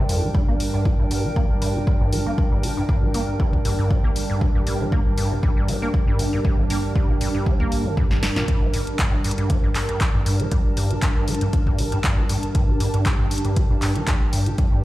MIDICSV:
0, 0, Header, 1, 5, 480
1, 0, Start_track
1, 0, Key_signature, -2, "minor"
1, 0, Tempo, 508475
1, 328, Time_signature, 4, 2, 24, 8
1, 14009, End_track
2, 0, Start_track
2, 0, Title_t, "Ambient pad"
2, 0, Program_c, 0, 92
2, 0, Note_on_c, 0, 62, 72
2, 0, Note_on_c, 0, 70, 73
2, 0, Note_on_c, 0, 79, 68
2, 8037, Note_on_c, 0, 81, 69
2, 8186, Note_off_c, 0, 79, 0
2, 14009, Note_off_c, 0, 62, 0
2, 14009, Note_off_c, 0, 70, 0
2, 14009, Note_off_c, 0, 81, 0
2, 14009, End_track
3, 0, Start_track
3, 0, Title_t, "Analog synth pad"
3, 0, Program_c, 1, 89
3, 0, Note_on_c, 1, 43, 78
3, 0, Note_on_c, 1, 55, 74
3, 0, Note_on_c, 1, 62, 78
3, 0, Note_on_c, 1, 74, 87
3, 315, Note_off_c, 1, 74, 0
3, 326, Note_on_c, 1, 70, 86
3, 4155, Note_off_c, 1, 70, 0
3, 4166, Note_on_c, 1, 67, 90
3, 7995, Note_off_c, 1, 67, 0
3, 8004, Note_on_c, 1, 70, 90
3, 11834, Note_off_c, 1, 70, 0
3, 11848, Note_on_c, 1, 67, 97
3, 14009, Note_off_c, 1, 43, 0
3, 14009, Note_off_c, 1, 55, 0
3, 14009, Note_off_c, 1, 62, 0
3, 14009, Note_off_c, 1, 67, 0
3, 14009, End_track
4, 0, Start_track
4, 0, Title_t, "Acid bass"
4, 0, Program_c, 2, 38
4, 88, Note_on_c, 2, 41, 76
4, 215, Note_on_c, 2, 55, 79
4, 229, Note_off_c, 2, 41, 0
4, 277, Note_off_c, 2, 55, 0
4, 328, Note_on_c, 2, 55, 79
4, 398, Note_off_c, 2, 55, 0
4, 456, Note_on_c, 2, 58, 72
4, 517, Note_off_c, 2, 58, 0
4, 695, Note_on_c, 2, 43, 77
4, 806, Note_on_c, 2, 50, 77
4, 821, Note_off_c, 2, 43, 0
4, 849, Note_off_c, 2, 50, 0
4, 934, Note_on_c, 2, 43, 74
4, 996, Note_off_c, 2, 43, 0
4, 1046, Note_on_c, 2, 43, 73
4, 1175, Note_on_c, 2, 55, 67
4, 1190, Note_off_c, 2, 43, 0
4, 1237, Note_off_c, 2, 55, 0
4, 1288, Note_on_c, 2, 58, 80
4, 1358, Note_off_c, 2, 58, 0
4, 1528, Note_on_c, 2, 43, 75
4, 1655, Note_on_c, 2, 50, 69
4, 1669, Note_off_c, 2, 43, 0
4, 1692, Note_off_c, 2, 50, 0
4, 1767, Note_on_c, 2, 43, 79
4, 1838, Note_off_c, 2, 43, 0
4, 1895, Note_on_c, 2, 43, 75
4, 2007, Note_on_c, 2, 55, 80
4, 2021, Note_off_c, 2, 43, 0
4, 2077, Note_off_c, 2, 55, 0
4, 2136, Note_on_c, 2, 58, 78
4, 2197, Note_off_c, 2, 58, 0
4, 2376, Note_on_c, 2, 43, 73
4, 2488, Note_on_c, 2, 50, 72
4, 2502, Note_off_c, 2, 43, 0
4, 2530, Note_off_c, 2, 50, 0
4, 2617, Note_on_c, 2, 43, 72
4, 2678, Note_off_c, 2, 43, 0
4, 2728, Note_on_c, 2, 43, 83
4, 2856, Note_on_c, 2, 55, 74
4, 2870, Note_off_c, 2, 43, 0
4, 2917, Note_off_c, 2, 55, 0
4, 2968, Note_on_c, 2, 58, 73
4, 3038, Note_off_c, 2, 58, 0
4, 3207, Note_on_c, 2, 43, 79
4, 3335, Note_on_c, 2, 50, 70
4, 3349, Note_off_c, 2, 43, 0
4, 3372, Note_off_c, 2, 50, 0
4, 3448, Note_on_c, 2, 43, 73
4, 3518, Note_off_c, 2, 43, 0
4, 3576, Note_on_c, 2, 43, 70
4, 3687, Note_on_c, 2, 55, 78
4, 3701, Note_off_c, 2, 43, 0
4, 3757, Note_off_c, 2, 55, 0
4, 3816, Note_on_c, 2, 58, 77
4, 3877, Note_off_c, 2, 58, 0
4, 4056, Note_on_c, 2, 43, 78
4, 4168, Note_on_c, 2, 50, 77
4, 4182, Note_off_c, 2, 43, 0
4, 4210, Note_off_c, 2, 50, 0
4, 4297, Note_on_c, 2, 43, 72
4, 4358, Note_off_c, 2, 43, 0
4, 4408, Note_on_c, 2, 43, 70
4, 4537, Note_on_c, 2, 55, 74
4, 4551, Note_off_c, 2, 43, 0
4, 4597, Note_off_c, 2, 55, 0
4, 4648, Note_on_c, 2, 58, 83
4, 4718, Note_off_c, 2, 58, 0
4, 4887, Note_on_c, 2, 43, 77
4, 5015, Note_on_c, 2, 50, 74
4, 5029, Note_off_c, 2, 43, 0
4, 5052, Note_off_c, 2, 50, 0
4, 5127, Note_on_c, 2, 43, 79
4, 5198, Note_off_c, 2, 43, 0
4, 5255, Note_on_c, 2, 43, 71
4, 5367, Note_on_c, 2, 55, 74
4, 5381, Note_off_c, 2, 43, 0
4, 5437, Note_off_c, 2, 55, 0
4, 5496, Note_on_c, 2, 58, 71
4, 5557, Note_off_c, 2, 58, 0
4, 5735, Note_on_c, 2, 43, 76
4, 5847, Note_on_c, 2, 50, 78
4, 5862, Note_off_c, 2, 43, 0
4, 5890, Note_off_c, 2, 50, 0
4, 5975, Note_on_c, 2, 43, 81
4, 6036, Note_off_c, 2, 43, 0
4, 6087, Note_on_c, 2, 43, 79
4, 6214, Note_on_c, 2, 55, 70
4, 6228, Note_off_c, 2, 43, 0
4, 6276, Note_off_c, 2, 55, 0
4, 6325, Note_on_c, 2, 58, 71
4, 6397, Note_off_c, 2, 58, 0
4, 6566, Note_on_c, 2, 43, 78
4, 6694, Note_on_c, 2, 50, 77
4, 6708, Note_off_c, 2, 43, 0
4, 6731, Note_off_c, 2, 50, 0
4, 6806, Note_on_c, 2, 43, 77
4, 6877, Note_off_c, 2, 43, 0
4, 6933, Note_on_c, 2, 43, 72
4, 7046, Note_on_c, 2, 55, 76
4, 7060, Note_off_c, 2, 43, 0
4, 7117, Note_off_c, 2, 55, 0
4, 7174, Note_on_c, 2, 58, 71
4, 7413, Note_on_c, 2, 50, 71
4, 7427, Note_off_c, 2, 58, 0
4, 7507, Note_off_c, 2, 50, 0
4, 7526, Note_on_c, 2, 43, 78
4, 7597, Note_off_c, 2, 43, 0
4, 7654, Note_on_c, 2, 43, 75
4, 7691, Note_off_c, 2, 43, 0
4, 7766, Note_on_c, 2, 31, 77
4, 7837, Note_off_c, 2, 31, 0
4, 7895, Note_on_c, 2, 46, 77
4, 7987, Note_off_c, 2, 46, 0
4, 8007, Note_on_c, 2, 43, 78
4, 8135, Note_on_c, 2, 55, 76
4, 8150, Note_off_c, 2, 43, 0
4, 8197, Note_off_c, 2, 55, 0
4, 8248, Note_on_c, 2, 43, 71
4, 8318, Note_off_c, 2, 43, 0
4, 8488, Note_on_c, 2, 43, 77
4, 8616, Note_on_c, 2, 50, 75
4, 8630, Note_off_c, 2, 43, 0
4, 8653, Note_off_c, 2, 50, 0
4, 8727, Note_on_c, 2, 43, 76
4, 8798, Note_off_c, 2, 43, 0
4, 8856, Note_on_c, 2, 43, 68
4, 8968, Note_on_c, 2, 55, 82
4, 8982, Note_off_c, 2, 43, 0
4, 9038, Note_off_c, 2, 55, 0
4, 9096, Note_on_c, 2, 43, 74
4, 9157, Note_off_c, 2, 43, 0
4, 9335, Note_on_c, 2, 43, 68
4, 9448, Note_on_c, 2, 50, 82
4, 9462, Note_off_c, 2, 43, 0
4, 9490, Note_off_c, 2, 50, 0
4, 9575, Note_on_c, 2, 43, 76
4, 9637, Note_off_c, 2, 43, 0
4, 9686, Note_on_c, 2, 43, 77
4, 9815, Note_on_c, 2, 55, 79
4, 9829, Note_off_c, 2, 43, 0
4, 9876, Note_off_c, 2, 55, 0
4, 9927, Note_on_c, 2, 43, 77
4, 9997, Note_off_c, 2, 43, 0
4, 10166, Note_on_c, 2, 43, 71
4, 10295, Note_on_c, 2, 50, 74
4, 10309, Note_off_c, 2, 43, 0
4, 10332, Note_off_c, 2, 50, 0
4, 10407, Note_on_c, 2, 43, 80
4, 10477, Note_off_c, 2, 43, 0
4, 10535, Note_on_c, 2, 43, 77
4, 10648, Note_on_c, 2, 55, 75
4, 10662, Note_off_c, 2, 43, 0
4, 10718, Note_off_c, 2, 55, 0
4, 10777, Note_on_c, 2, 43, 67
4, 10837, Note_off_c, 2, 43, 0
4, 11016, Note_on_c, 2, 43, 73
4, 11127, Note_on_c, 2, 50, 76
4, 11141, Note_off_c, 2, 43, 0
4, 11169, Note_off_c, 2, 50, 0
4, 11256, Note_on_c, 2, 43, 69
4, 11317, Note_off_c, 2, 43, 0
4, 11368, Note_on_c, 2, 43, 83
4, 11495, Note_on_c, 2, 55, 76
4, 11509, Note_off_c, 2, 43, 0
4, 11557, Note_off_c, 2, 55, 0
4, 11607, Note_on_c, 2, 43, 79
4, 11677, Note_off_c, 2, 43, 0
4, 11847, Note_on_c, 2, 43, 81
4, 11975, Note_on_c, 2, 50, 72
4, 11989, Note_off_c, 2, 43, 0
4, 12012, Note_off_c, 2, 50, 0
4, 12087, Note_on_c, 2, 43, 70
4, 12158, Note_off_c, 2, 43, 0
4, 12216, Note_on_c, 2, 43, 75
4, 12327, Note_on_c, 2, 55, 77
4, 12341, Note_off_c, 2, 43, 0
4, 12398, Note_off_c, 2, 55, 0
4, 12455, Note_on_c, 2, 43, 75
4, 12517, Note_off_c, 2, 43, 0
4, 12695, Note_on_c, 2, 43, 70
4, 12808, Note_on_c, 2, 50, 80
4, 12822, Note_off_c, 2, 43, 0
4, 12850, Note_off_c, 2, 50, 0
4, 12935, Note_on_c, 2, 43, 74
4, 12997, Note_off_c, 2, 43, 0
4, 13048, Note_on_c, 2, 43, 75
4, 13175, Note_on_c, 2, 55, 72
4, 13189, Note_off_c, 2, 43, 0
4, 13237, Note_off_c, 2, 55, 0
4, 13288, Note_on_c, 2, 43, 81
4, 13358, Note_off_c, 2, 43, 0
4, 13527, Note_on_c, 2, 43, 82
4, 13655, Note_on_c, 2, 50, 82
4, 13669, Note_off_c, 2, 43, 0
4, 13692, Note_off_c, 2, 50, 0
4, 13768, Note_on_c, 2, 43, 80
4, 13838, Note_off_c, 2, 43, 0
4, 13896, Note_on_c, 2, 43, 78
4, 14009, Note_off_c, 2, 43, 0
4, 14009, End_track
5, 0, Start_track
5, 0, Title_t, "Drums"
5, 87, Note_on_c, 9, 46, 101
5, 181, Note_off_c, 9, 46, 0
5, 326, Note_on_c, 9, 36, 109
5, 421, Note_off_c, 9, 36, 0
5, 567, Note_on_c, 9, 46, 104
5, 661, Note_off_c, 9, 46, 0
5, 806, Note_on_c, 9, 36, 106
5, 901, Note_off_c, 9, 36, 0
5, 1047, Note_on_c, 9, 46, 94
5, 1141, Note_off_c, 9, 46, 0
5, 1287, Note_on_c, 9, 36, 106
5, 1381, Note_off_c, 9, 36, 0
5, 1527, Note_on_c, 9, 46, 97
5, 1622, Note_off_c, 9, 46, 0
5, 1767, Note_on_c, 9, 36, 109
5, 1861, Note_off_c, 9, 36, 0
5, 2007, Note_on_c, 9, 46, 101
5, 2101, Note_off_c, 9, 46, 0
5, 2247, Note_on_c, 9, 36, 105
5, 2341, Note_off_c, 9, 36, 0
5, 2487, Note_on_c, 9, 46, 98
5, 2581, Note_off_c, 9, 46, 0
5, 2727, Note_on_c, 9, 36, 101
5, 2821, Note_off_c, 9, 36, 0
5, 2967, Note_on_c, 9, 46, 93
5, 3061, Note_off_c, 9, 46, 0
5, 3207, Note_on_c, 9, 36, 99
5, 3301, Note_off_c, 9, 36, 0
5, 3335, Note_on_c, 9, 36, 51
5, 3429, Note_off_c, 9, 36, 0
5, 3446, Note_on_c, 9, 46, 96
5, 3540, Note_off_c, 9, 46, 0
5, 3687, Note_on_c, 9, 36, 106
5, 3781, Note_off_c, 9, 36, 0
5, 3926, Note_on_c, 9, 46, 94
5, 4020, Note_off_c, 9, 46, 0
5, 4166, Note_on_c, 9, 36, 110
5, 4261, Note_off_c, 9, 36, 0
5, 4406, Note_on_c, 9, 46, 96
5, 4500, Note_off_c, 9, 46, 0
5, 4646, Note_on_c, 9, 36, 102
5, 4741, Note_off_c, 9, 36, 0
5, 4886, Note_on_c, 9, 46, 93
5, 4980, Note_off_c, 9, 46, 0
5, 5126, Note_on_c, 9, 36, 103
5, 5221, Note_off_c, 9, 36, 0
5, 5366, Note_on_c, 9, 46, 92
5, 5460, Note_off_c, 9, 46, 0
5, 5606, Note_on_c, 9, 36, 105
5, 5701, Note_off_c, 9, 36, 0
5, 5846, Note_on_c, 9, 46, 100
5, 5940, Note_off_c, 9, 46, 0
5, 6086, Note_on_c, 9, 36, 103
5, 6181, Note_off_c, 9, 36, 0
5, 6326, Note_on_c, 9, 46, 100
5, 6420, Note_off_c, 9, 46, 0
5, 6566, Note_on_c, 9, 36, 104
5, 6660, Note_off_c, 9, 36, 0
5, 6805, Note_on_c, 9, 46, 98
5, 6900, Note_off_c, 9, 46, 0
5, 7046, Note_on_c, 9, 36, 105
5, 7141, Note_off_c, 9, 36, 0
5, 7174, Note_on_c, 9, 36, 51
5, 7269, Note_off_c, 9, 36, 0
5, 7286, Note_on_c, 9, 46, 90
5, 7381, Note_off_c, 9, 46, 0
5, 7526, Note_on_c, 9, 36, 113
5, 7621, Note_off_c, 9, 36, 0
5, 7655, Note_on_c, 9, 38, 48
5, 7749, Note_off_c, 9, 38, 0
5, 7766, Note_on_c, 9, 38, 76
5, 7766, Note_on_c, 9, 46, 99
5, 7861, Note_off_c, 9, 38, 0
5, 7861, Note_off_c, 9, 46, 0
5, 7895, Note_on_c, 9, 38, 79
5, 7989, Note_off_c, 9, 38, 0
5, 8006, Note_on_c, 9, 42, 61
5, 8007, Note_on_c, 9, 36, 110
5, 8101, Note_off_c, 9, 36, 0
5, 8101, Note_off_c, 9, 42, 0
5, 8246, Note_on_c, 9, 46, 106
5, 8341, Note_off_c, 9, 46, 0
5, 8375, Note_on_c, 9, 42, 53
5, 8469, Note_off_c, 9, 42, 0
5, 8486, Note_on_c, 9, 42, 68
5, 8487, Note_on_c, 9, 36, 107
5, 8487, Note_on_c, 9, 39, 120
5, 8581, Note_off_c, 9, 36, 0
5, 8581, Note_off_c, 9, 39, 0
5, 8581, Note_off_c, 9, 42, 0
5, 8726, Note_on_c, 9, 46, 102
5, 8791, Note_on_c, 9, 42, 64
5, 8821, Note_off_c, 9, 46, 0
5, 8854, Note_off_c, 9, 42, 0
5, 8854, Note_on_c, 9, 42, 51
5, 8949, Note_off_c, 9, 42, 0
5, 8966, Note_on_c, 9, 42, 67
5, 8967, Note_on_c, 9, 36, 105
5, 9060, Note_off_c, 9, 42, 0
5, 9062, Note_off_c, 9, 36, 0
5, 9206, Note_on_c, 9, 46, 103
5, 9207, Note_on_c, 9, 39, 59
5, 9301, Note_off_c, 9, 39, 0
5, 9301, Note_off_c, 9, 46, 0
5, 9335, Note_on_c, 9, 42, 51
5, 9429, Note_off_c, 9, 42, 0
5, 9447, Note_on_c, 9, 36, 114
5, 9447, Note_on_c, 9, 39, 119
5, 9447, Note_on_c, 9, 42, 64
5, 9541, Note_off_c, 9, 39, 0
5, 9541, Note_off_c, 9, 42, 0
5, 9542, Note_off_c, 9, 36, 0
5, 9687, Note_on_c, 9, 46, 108
5, 9781, Note_off_c, 9, 46, 0
5, 9815, Note_on_c, 9, 42, 57
5, 9909, Note_off_c, 9, 42, 0
5, 9926, Note_on_c, 9, 42, 60
5, 9927, Note_on_c, 9, 36, 112
5, 10020, Note_off_c, 9, 42, 0
5, 10022, Note_off_c, 9, 36, 0
5, 10166, Note_on_c, 9, 46, 107
5, 10261, Note_off_c, 9, 46, 0
5, 10295, Note_on_c, 9, 42, 49
5, 10389, Note_off_c, 9, 42, 0
5, 10406, Note_on_c, 9, 39, 114
5, 10406, Note_on_c, 9, 42, 62
5, 10407, Note_on_c, 9, 36, 113
5, 10500, Note_off_c, 9, 39, 0
5, 10500, Note_off_c, 9, 42, 0
5, 10502, Note_off_c, 9, 36, 0
5, 10645, Note_on_c, 9, 46, 105
5, 10709, Note_on_c, 9, 42, 61
5, 10739, Note_off_c, 9, 46, 0
5, 10773, Note_off_c, 9, 42, 0
5, 10773, Note_on_c, 9, 42, 52
5, 10868, Note_off_c, 9, 42, 0
5, 10885, Note_on_c, 9, 42, 64
5, 10887, Note_on_c, 9, 36, 110
5, 10980, Note_off_c, 9, 42, 0
5, 10981, Note_off_c, 9, 36, 0
5, 11015, Note_on_c, 9, 36, 57
5, 11109, Note_off_c, 9, 36, 0
5, 11125, Note_on_c, 9, 46, 101
5, 11220, Note_off_c, 9, 46, 0
5, 11254, Note_on_c, 9, 42, 49
5, 11348, Note_off_c, 9, 42, 0
5, 11365, Note_on_c, 9, 42, 64
5, 11366, Note_on_c, 9, 39, 127
5, 11367, Note_on_c, 9, 36, 116
5, 11460, Note_off_c, 9, 39, 0
5, 11460, Note_off_c, 9, 42, 0
5, 11461, Note_off_c, 9, 36, 0
5, 11606, Note_on_c, 9, 46, 114
5, 11700, Note_off_c, 9, 46, 0
5, 11733, Note_on_c, 9, 42, 52
5, 11828, Note_off_c, 9, 42, 0
5, 11846, Note_on_c, 9, 42, 60
5, 11847, Note_on_c, 9, 36, 126
5, 11940, Note_off_c, 9, 42, 0
5, 11941, Note_off_c, 9, 36, 0
5, 12086, Note_on_c, 9, 46, 107
5, 12181, Note_off_c, 9, 46, 0
5, 12214, Note_on_c, 9, 42, 49
5, 12308, Note_off_c, 9, 42, 0
5, 12326, Note_on_c, 9, 39, 119
5, 12326, Note_on_c, 9, 42, 64
5, 12327, Note_on_c, 9, 36, 117
5, 12420, Note_off_c, 9, 42, 0
5, 12421, Note_off_c, 9, 36, 0
5, 12421, Note_off_c, 9, 39, 0
5, 12565, Note_on_c, 9, 46, 105
5, 12629, Note_on_c, 9, 42, 63
5, 12660, Note_off_c, 9, 46, 0
5, 12693, Note_off_c, 9, 42, 0
5, 12693, Note_on_c, 9, 42, 48
5, 12787, Note_off_c, 9, 42, 0
5, 12805, Note_on_c, 9, 42, 63
5, 12807, Note_on_c, 9, 36, 115
5, 12899, Note_off_c, 9, 42, 0
5, 12901, Note_off_c, 9, 36, 0
5, 13045, Note_on_c, 9, 46, 103
5, 13046, Note_on_c, 9, 39, 60
5, 13140, Note_off_c, 9, 39, 0
5, 13140, Note_off_c, 9, 46, 0
5, 13174, Note_on_c, 9, 42, 45
5, 13268, Note_off_c, 9, 42, 0
5, 13286, Note_on_c, 9, 39, 115
5, 13286, Note_on_c, 9, 42, 64
5, 13287, Note_on_c, 9, 36, 125
5, 13380, Note_off_c, 9, 42, 0
5, 13381, Note_off_c, 9, 36, 0
5, 13381, Note_off_c, 9, 39, 0
5, 13526, Note_on_c, 9, 46, 113
5, 13620, Note_off_c, 9, 46, 0
5, 13654, Note_on_c, 9, 42, 51
5, 13748, Note_off_c, 9, 42, 0
5, 13765, Note_on_c, 9, 42, 57
5, 13767, Note_on_c, 9, 36, 119
5, 13860, Note_off_c, 9, 42, 0
5, 13861, Note_off_c, 9, 36, 0
5, 14009, End_track
0, 0, End_of_file